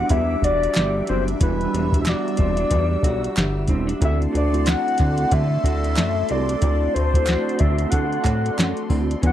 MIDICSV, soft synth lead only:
0, 0, Header, 1, 2, 480
1, 0, Start_track
1, 0, Tempo, 651395
1, 1038, Time_signature, 4, 2, 24, 8
1, 6871, End_track
2, 0, Start_track
2, 0, Title_t, "Soft synth lead"
2, 0, Program_c, 0, 80
2, 0, Note_on_c, 0, 78, 115
2, 79, Note_on_c, 0, 76, 114
2, 90, Note_off_c, 0, 78, 0
2, 318, Note_off_c, 0, 76, 0
2, 326, Note_on_c, 0, 74, 109
2, 772, Note_off_c, 0, 74, 0
2, 805, Note_on_c, 0, 72, 93
2, 908, Note_off_c, 0, 72, 0
2, 1049, Note_on_c, 0, 71, 95
2, 1453, Note_off_c, 0, 71, 0
2, 1484, Note_on_c, 0, 76, 65
2, 1537, Note_on_c, 0, 74, 96
2, 1548, Note_off_c, 0, 76, 0
2, 2727, Note_off_c, 0, 74, 0
2, 2980, Note_on_c, 0, 76, 108
2, 3083, Note_off_c, 0, 76, 0
2, 3219, Note_on_c, 0, 74, 107
2, 3455, Note_on_c, 0, 78, 107
2, 3466, Note_off_c, 0, 74, 0
2, 3927, Note_on_c, 0, 76, 117
2, 3938, Note_off_c, 0, 78, 0
2, 4651, Note_on_c, 0, 74, 94
2, 4662, Note_off_c, 0, 76, 0
2, 4881, Note_off_c, 0, 74, 0
2, 4885, Note_on_c, 0, 74, 95
2, 5115, Note_on_c, 0, 72, 104
2, 5126, Note_off_c, 0, 74, 0
2, 5599, Note_on_c, 0, 76, 99
2, 5610, Note_off_c, 0, 72, 0
2, 5824, Note_on_c, 0, 78, 100
2, 5835, Note_off_c, 0, 76, 0
2, 6550, Note_off_c, 0, 78, 0
2, 6825, Note_on_c, 0, 78, 110
2, 6871, Note_off_c, 0, 78, 0
2, 6871, End_track
0, 0, End_of_file